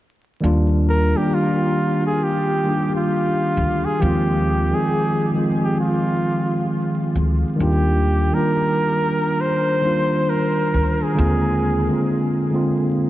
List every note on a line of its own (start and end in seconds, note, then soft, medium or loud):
0.40 1.12 D#2 medium
0.40 0.83 D#3 loud
0.40 0.84 G3 loud
0.40 0.85 A#3 loud
0.40 0.85 D4 loud
0.46 0.86 F4 loud
0.89 1.18 A#4 loud
1.14 2.09 D#3 medium
1.14 2.09 G3 medium
1.14 2.10 A#3 medium
1.14 1.36 G4 medium
1.18 2.11 D4 medium
1.18 2.11 G4 medium
1.34 2.06 F4 loud
2.06 2.25 G#4 loud
2.24 2.95 G4 loud
2.64 3.49 D#3 medium
2.64 3.49 G3 medium
2.64 3.50 A#3 medium
2.68 3.51 D4 medium
2.68 2.76 F4 medium
2.76 3.55 G4 medium
2.96 3.87 F4 loud
3.57 3.83 D2 medium
3.85 4.02 G#4 medium
4.00 4.70 D#2 loud
4.00 4.42 D#3 medium
4.00 4.43 F3 medium
4.00 4.43 G#3 medium
4.00 4.44 C4 medium
4.00 4.76 G4 loud
4.05 4.45 F4 loud
4.70 5.12 D#3 medium
4.70 5.12 F3 medium
4.70 5.13 G#3 medium
4.70 5.14 C4 medium
4.74 5.32 G#4 loud
4.74 5.14 G#4 medium
5.34 6.48 D#3 medium
5.34 6.48 F3 medium
5.34 6.49 G#3 medium
5.34 6.50 C4 medium
5.39 6.50 F4 medium
5.64 5.79 G4 medium
5.80 7.11 F4 medium
7.15 7.42 D2 medium
7.56 8.00 D#3 loud
7.56 8.00 G3 medium
7.56 8.01 A#3 medium
7.56 8.01 D4 medium
7.60 8.29 D#2 loud
7.60 8.02 F4 loud
7.60 8.36 G4 medium
8.32 9.26 D#3 medium
8.32 9.26 G3 medium
8.32 9.27 A#3 medium
8.32 9.27 D4 medium
8.32 9.42 A#4 loud
8.37 9.28 F4 medium
9.40 10.31 C5 loud
9.81 10.66 D#3 medium
9.81 10.66 G3 medium
9.81 10.67 A#3 medium
9.81 10.68 D4 medium
9.87 10.68 F4 medium
10.30 11.04 A#4 loud
10.74 11.00 D2 medium
11.02 12.36 G#4 medium
11.14 11.58 D3 loud
11.14 11.58 G#3 medium
11.14 11.59 A#3 medium
11.14 11.60 C4 medium
11.18 11.87 D#2 loud
11.18 11.60 F4 loud
11.87 12.29 D3 medium
11.87 12.29 G#3 medium
11.87 12.30 A#3 medium
11.87 12.31 C4 medium
11.93 12.31 F4 medium
12.50 13.10 D3 medium
12.50 13.10 G#3 medium
12.50 13.10 A#3 medium
12.54 13.10 C4 medium
12.54 13.10 F4 loud